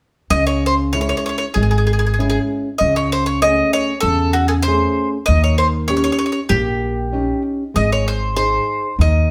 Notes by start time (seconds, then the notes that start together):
0.30 C#2 C#3 D#5
0.47 C#5
0.66 C5
0.93 G#3 C#4 E4 C#5
1.01 C#5
1.09 C#5
1.17 C#5
1.26 C#5
1.38 C#5
1.54 G#1 G#3 G#4
1.63 G#4
1.71 G#4
1.78 G#4
1.87 G#4
1.93 G#4
1.99 G#4
2.07 G#4
2.14 G#4
2.19 G#3 C#4 E4 G#4
2.30 G#4
2.78 C#2 C#3 D#5
2.96 C#5
3.12 C5
3.26 C#5
3.42 A3 C#4 G#4 D#5
3.73 C#5
4.01 E2 A4
4.05 C#3
4.33 F#4
4.48 G#4 A4
4.62 C5
4.67 A3 C#4 G#4
5.26 D#2 D#3 D#5
5.44 C#5
5.58 C5
5.88 C#4 D#4 G4 C#5
5.97 C#5
6.04 C#5
6.12 C#5
6.19 C#5
6.26 C#5
6.32 C#5
6.49 A#1 A#3 G4
7.13 C#4 D#4 G4
7.74 G#1 G#3 D#5
7.92 C#5
8.08 C5
8.36 D#4 G#4 C5
8.99 D#2 D#3 D#5